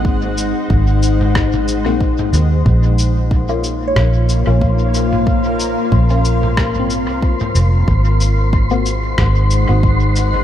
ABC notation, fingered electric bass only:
X:1
M:4/4
L:1/16
Q:"Swing 16ths" 1/4=92
K:Bbm
V:1 name="Fingered electric bass" clef=bass
A,,,3 z A,,,6- A,,, B,,,3 E,,2 | B,,,8 B,,,3 B,,,4- B,,,- | B,,,3 z B,,,6- B,,, C,,3 F,,,2 | A,,,8 A,,,3 A,,,4- A,,, |]